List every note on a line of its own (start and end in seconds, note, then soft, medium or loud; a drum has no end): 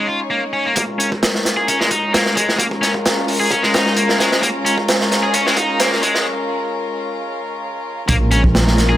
0.00 0.72 G#3 medium
0.00 0.72 C#4 medium
0.00 0.73 D#4 medium
0.00 0.75 C#5 medium
0.07 0.19 F4 medium
0.30 0.42 A#3 medium
0.53 0.65 C#4 medium
0.66 0.73 A#3 medium
0.76 8.05 G#3 medium
0.76 0.82 A#3 medium
0.76 8.05 C#4 medium
0.76 8.05 F4 medium
0.76 8.05 A#4 medium
0.76 kick loud
0.76 closed hi-hat medium
0.99 1.08 C#4 medium
0.99 closed hi-hat medium
1.12 kick medium
1.23 snare loud
1.23 closed hi-hat medium
1.35 snare soft
1.45 snare soft
1.45 closed hi-hat medium
1.57 1.67 G#4 medium
1.68 1.79 C#4 medium
1.68 closed hi-hat medium
1.79 1.90 G#3 medium
1.79 snare soft
1.90 2.12 D#4 medium
1.90 kick medium
1.90 closed hi-hat medium
2.13 2.35 A#3 medium
2.13 snare loud
2.13 closed hi-hat medium
2.26 snare soft
2.36 2.58 G#3 loud
2.36 kick loud
2.36 closed hi-hat medium
2.49 snare soft
2.59 2.65 A#3 medium
2.59 kick loud
2.59 closed hi-hat medium
2.71 kick medium
2.82 2.91 C#4 medium
2.82 snare soft
2.82 closed hi-hat medium
2.94 kick medium
3.06 snare loud
3.06 closed hi-hat medium
3.28 open hi-hat medium
3.40 3.50 G#4 medium
3.51 3.63 C#4 medium
3.51 kick loud
3.51 closed hi-hat medium
3.63 3.73 G#3 medium
3.63 snare soft
3.73 3.96 D#4 medium
3.73 snare loud
3.73 closed hi-hat medium
3.86 snare soft
3.96 4.19 A#3 medium
3.96 closed hi-hat medium
4.09 snare medium
4.19 4.41 G#3 loud
4.19 snare medium
4.19 closed hi-hat medium
4.32 snare medium
4.42 4.48 A#3 medium
4.42 kick loud
4.42 closed hi-hat medium
4.65 4.74 C#4 medium
4.65 closed hi-hat medium
4.78 kick medium
4.88 snare loud
4.88 closed hi-hat medium
5.01 snare soft
5.12 snare soft
5.12 closed hi-hat medium
5.23 5.34 G#4 medium
5.34 5.46 C#4 medium
5.34 closed hi-hat medium
5.46 5.56 G#3 medium
5.46 snare soft
5.57 5.79 D#4 medium
5.57 kick loud
5.57 closed hi-hat medium
5.80 6.02 A#3 medium
5.80 snare loud
5.80 closed hi-hat medium
5.92 snare soft
6.03 6.25 G#3 loud
6.03 kick medium
6.03 closed hi-hat medium
6.15 snare soft
8.09 8.97 A#1 loud
8.09 8.97 G#3 medium
8.09 8.15 A#3 medium
8.09 8.97 C#4 medium
8.09 8.97 F4 medium
8.09 8.97 A#4 medium
8.09 kick loud
8.09 closed hi-hat medium
8.31 8.41 C#4 medium
8.31 closed hi-hat medium
8.44 kick loud
8.55 snare loud
8.55 closed hi-hat loud
8.67 snare soft
8.78 snare soft
8.78 closed hi-hat medium
8.89 8.97 G#4 medium